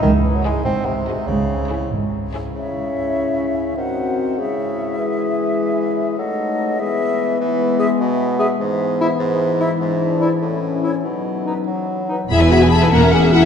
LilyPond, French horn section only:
\new Staff \with { instrumentName = "French horn section" } { \time 6/8 \key cis \minor \tempo 4. = 98 << { r2. | r2. | e'2. | ges'4. e'4.~ |
e'2. | dis'4. b4.~ | \key e \major b2. | b2. |
d'4. cis'4. | dis'2~ dis'8 r8 | e'8 fis'16 gis'16 a'8 ais'8 gis'8 e'8 | } \\ { r2. | r2. | cis'2. | c'4. gis4.~ |
gis2. | a4. gis4.~ | gis2. | e2.~ |
e2. | fis2~ fis8 r8 | r2. | } >> }